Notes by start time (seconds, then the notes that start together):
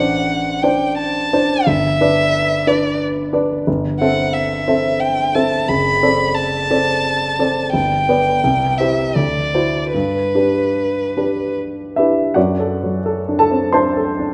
Already playing: A1 D4 C5 D5 F#5
0.63 D4 C5 D5 G5
0.98 A5
1.33 D4 C5 D5
1.66 G1 E5
2.01 D4 B4 D5
2.67 D4 B4 D5
3.33 D4 B4 D5
3.67 G1
4.00 C4 A4 E5 F#5
4.33 E5
4.68 C4 A4 E5
5.00 G5
5.34 C4 A4 E5 A5
5.69 F#1 B5
6.03 C4 A4 D5
6.35 A5
6.71 C4 A4 D5
7.39 C4 A4 D5
7.74 G1 G5
8.09 B3 B4 D5
8.44 C2
8.78 E4 G4 C5 E5
9.15 D2 D5
9.54 E4 F#4 C5
9.93 G2 B4
10.35 D4 G4 B4
11.17 D4 G4 B4
11.96 D4 E4 G4 B4 E5
12.34 F#2 F#4 D5 F#5
12.60 A4
12.83 F#3
13.06 A4
13.29 D4
13.39 A4 A5
13.51 C4
13.73 D4 C5 A5 C6
13.97 A4
14.19 D4